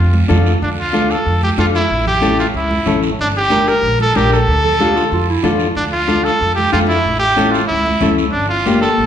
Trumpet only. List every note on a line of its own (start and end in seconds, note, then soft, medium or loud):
0.00 0.16 F4 medium
0.63 0.70 D4 medium
0.80 1.13 F4 medium
1.12 1.43 A4 medium
1.43 1.50 G4 medium
1.59 1.66 F4 medium
1.75 2.05 E4 medium
2.07 2.37 G4 medium
2.40 2.47 F4 medium
2.56 3.01 E4 medium
3.21 3.28 D4 medium
3.37 3.70 G4 loud
3.68 4.00 A#4 loud
4.01 4.17 A4 loud
4.16 4.32 G4 loud
4.33 5.30 A4 loud
5.76 5.84 D4 medium
5.92 6.26 F4 medium
6.24 6.54 A4 loud
6.55 6.71 G4 loud
6.72 6.80 F4 medium
6.88 7.19 E4 loud
7.19 7.53 G4 loud
7.51 7.67 F4 medium
7.67 8.14 E4 loud
8.32 8.48 D4 medium
8.49 8.80 F4 medium
8.81 9.06 A4 medium